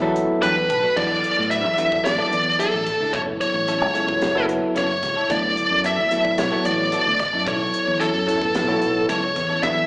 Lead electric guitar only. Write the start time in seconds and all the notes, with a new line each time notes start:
0.42 B4
0.97 D5
1.51 E5
2.05 D5
2.59 A4
3.13 C#5
3.41 C#5
4.78 C#5
5.31 D5
5.86 E5
6.39 C#5
6.66 D5
7.20 D5
7.48 C#5
8.00 A4
9.09 C#5
9.63 E5